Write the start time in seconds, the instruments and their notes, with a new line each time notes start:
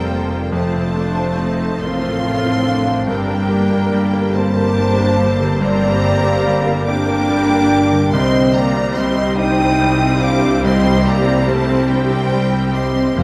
Already playing: double bass section F1, grand piano F2 A3 A#3 C4 A4 C5, harp F2 F3 C4 F4 C5 A5 C6, cello section F2, french horn section G3, viola section C4 F4, violin section A4 C5 G5, flute section A#4
0.11 viola section A#3, harp C4, grand piano C5
0.31 harp A3, grand piano C5
0.52 grand piano F2, harp F2, viola section A3 C4, french horn section A3, violin section F4 C5 A5, flute section C5
0.75 harp C3, grand piano C4
0.96 harp C4, viola section D4, grand piano A4
1.17 harp C5, grand piano C5
1.38 grand piano C4, viola section D#4, harp A4
1.59 grand piano A3, harp C5
1.79 double bass section A1, cello section A2, grand piano A#3, french horn section C4, violin section F4 A4 C6, viola section F4, flute section F5, harp C6
2.02 grand piano C4, harp C5
2.23 grand piano A3, viola section F4, harp A4
2.44 grand piano C4, harp C5
2.65 viola section D4, grand piano A4
2.86 harp A3, grand piano C5
3.06 double bass section G1, grand piano G2, cello section G2, harp G2, french horn section G3, viola section C4, violin section G4 A#4 G5, flute section A#4
3.28 harp G3, grand piano A#3
3.49 harp A#3, viola section A#3, grand piano G4
3.71 grand piano A#3, harp G4
3.92 grand piano G3, viola section A#3, harp A#3
4.13 grand piano A#3, harp A#4
4.33 viola section G3 G4, french horn section A#3, grand piano C4, violin section C5 A5, flute section C5, harp G5
4.56 grand piano A#3, harp A#4
4.76 grand piano G3, viola section D4, harp G4
4.97 harp A#3, grand piano A#3
5.18 harp G3, viola section C4, grand piano G4
5.40 harp D3, grand piano A#3
5.60 grand piano G2, harp G2, french horn section A#3, viola section G4, violin section A#4 A#5, flute section D5
5.82 harp G3, grand piano G3
6.03 harp A#3, grand piano G4
6.24 grand piano A#3, harp G4
6.45 grand piano G3, harp A#3
6.66 grand piano A#3, harp A#4
6.86 viola section A#3 D4, grand piano C4, french horn section D4, violin section G4 A#4 D6, harp G5, flute section G5
7.08 grand piano A#3, harp A#4
7.28 grand piano G3, harp G4
7.49 harp A#3, grand piano A#3
7.70 harp G3, grand piano G4
7.91 harp D3, grand piano A#3
8.11 double bass section C2, grand piano C2, cello section C3, harp C3, viola section G3 C4, french horn section C4, violin section G4 C5 C6, flute section D#5
8.33 harp C4, grand piano C4
8.53 french horn section A#3, harp G4, grand piano G4, flute section D5, violin section A#5
8.75 harp C4, grand piano C4
8.95 grand piano G3, french horn section C4, harp C5, flute section D#5, violin section C6
9.17 grand piano C4, harp G5
9.35 french horn section D#4, harp C5, flute section G5
9.39 grand piano D4, violin section D#6
9.60 grand piano C4
9.81 grand piano G3, harp C5
10.02 grand piano C4, harp G4
10.21 harp C4, french horn section D4, grand piano G4, flute section F5, violin section D6
10.44 harp G3, grand piano C4
10.62 grand piano C2, harp C3, french horn section C4, flute section D#5
10.67 violin section C6
10.86 grand piano G3, harp C4
11.03 french horn section A#3, harp G4, grand piano G4, flute section D5
11.08 violin section A#5
11.27 grand piano C4, harp C4
11.42 french horn section A3
11.48 grand piano G3, flute section C5, harp C5, violin section A5
11.69 grand piano C4, harp G5
11.85 french horn section G3
11.89 grand piano D4, harp C5, flute section C5, violin section G5
12.11 grand piano C4
12.32 grand piano G3, harp C5
12.53 grand piano C4, harp G4
12.71 french horn section C4, harp C4, grand piano G4
12.75 flute section D#5, violin section C6
12.95 harp G3, grand piano C4
13.13 double bass section F1, cello section F2, timpani F2, grand piano F2, harp C3, french horn section A#3, viola section A#3 C4, violin section C5, flute section F5
13.19 violin section A#5